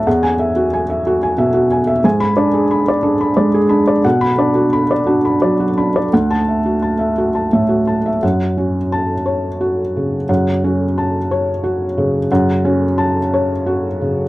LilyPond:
<<
  \new Staff \with { instrumentName = "Felt piano" } { \time 6/8 \key fis \minor \tempo 4. = 59 << { r16 gis''8 r2 r16 | r16 b''8 r2 r16 | r16 b''8 r2 r16 | r16 a''8 r2 r16 |
r4 a''8. r4 r16 | r2. | r2. | } \\ { fis''8 e''16 fis'16 gis''16 e''16 fis'16 gis''16 e''16 fis'16 gis''16 e''16 | gis''8 d''16 gis'16 b''16 d''16 gis'16 b''16 d''16 gis'16 b''16 d''16 | fis''8 d''16 fis'16 b''16 d''16 fis'16 b''16 d''16 fis'16 b''16 d''16 | fis''8 e''16 fis'16 a''16 e''16 fis'16 a''16 e''16 fis'16 a''16 e''16 |
fis''8 fis'8. r16 cis''8 fis'8 cis8 | fis''8 fis'8 a''8 cis''8 fis'8 cis8 | fis''8 fis'8 a''8 cis''8 fis'8 cis8 | } >> }
  \new Staff \with { instrumentName = "Felt piano" } { \clef bass \time 6/8 \key fis \minor e,2 b,4 | gis,8 d'4 d'8 gis8 d'8 | b,8 d'4 d'8 fis8 d'8 | d,2 a,4 |
fis,8 cis'4 r4. | fis,8 cis'4 r4. | fis,8 cis'4 r4. | }
>>